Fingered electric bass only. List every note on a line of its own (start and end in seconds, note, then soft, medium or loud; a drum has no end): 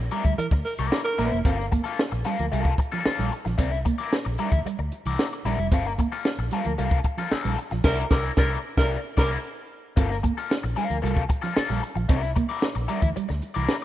0.25 0.36 D2 medium
0.38 muted fingered electric bass stroke soft
0.52 0.62 D2 medium
0.79 0.89 C2 medium
1.19 1.29 A#1 medium
1.32 1.43 F1 medium
1.45 1.76 G1 loud
2.12 2.22 A#1 medium
2.39 2.50 D2 medium
2.53 2.73 C2 loud
3.06 muted fingered electric bass stroke soft
3.19 3.29 A#1 loud
3.46 3.56 A#1 medium
3.59 3.90 C2 loud
4.26 4.36 A#1 medium
4.52 4.62 D2 medium
4.66 muted fingered electric bass stroke soft
4.79 4.89 D2 medium
5.06 5.16 C2 medium
5.45 5.55 A#1 medium
5.58 5.72 F1 medium
5.72 6.03 G1 loud
6.38 6.49 A#1 loud
6.66 6.76 D2 medium
6.79 6.99 C2 medium
7.32 muted fingered electric bass stroke soft
7.45 7.55 A#1 loud
7.72 7.82 A#1 medium
7.85 8.03 C2 loud
8.11 8.29 C2 medium
8.37 8.56 C2 loud
8.77 8.96 C2 medium
9.18 9.36 C2 loud
9.97 10.28 G1 loud
10.64 10.74 A#1 medium
10.90 11.00 D2 medium
11.04 11.24 C2 loud
11.57 muted fingered electric bass stroke soft
11.70 11.80 A#1 medium
11.96 12.06 A#1 medium
12.10 12.41 C2 loud
12.76 12.86 A#1 loud
13.02 13.13 D2 medium
13.17 muted fingered electric bass stroke medium
13.30 13.40 D2 loud
13.56 13.66 C2 medium